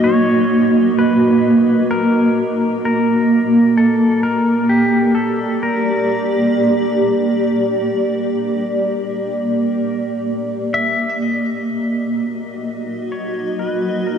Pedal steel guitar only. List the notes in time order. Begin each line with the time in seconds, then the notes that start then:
0.04 C#5
0.99 B4
1.91 A#4
2.85 A#4
3.77 A4
4.23 A#4
4.69 G4
5.15 A4
5.63 A#4
10.74 E5
11.22 D#5
13.12 C#5
13.59 B4
14.07 A#4